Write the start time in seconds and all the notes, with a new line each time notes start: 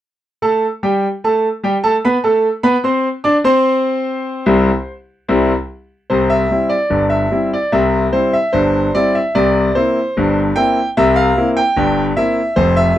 0.42 A3 A4 A5
0.83 G3 G4 G5
1.24 A3 A4 A5
1.63 G3 G4 G5
1.84 A3 A4 A5
2.05 B3 B4 B5
2.24 A3 A4 A5
2.63 B3 B4 B5
2.84 C4 C5 C6
3.24 D4 D5 D6
3.44 C4 C5 C6
4.46 C2 G3 C4 E4
5.28 C2 G3 C4 E4
6.10 C2 C3 C5
6.30 E5
6.51 G3 C4 E4
6.69 D5
6.90 G1 G2
7.10 E5
7.31 G3 C4 E4
7.54 D5
7.72 C2 C3 E5
8.13 G3 C4 E4 C5
8.33 E5
8.53 G1 G2 C5
8.95 G3 C4 E4 D5
9.15 E5
9.35 C2 C3 D5
9.75 A#3 C4 E4 C5
10.17 G1 G2
10.56 A#3 C4 E4 G5
10.97 C2 C3 E5
11.16 F5
11.37 A#3 C4 E4
11.57 G5
11.77 G1 G2
12.17 A#3 C4 E4 E5
12.56 F1 F2 C5
12.77 E5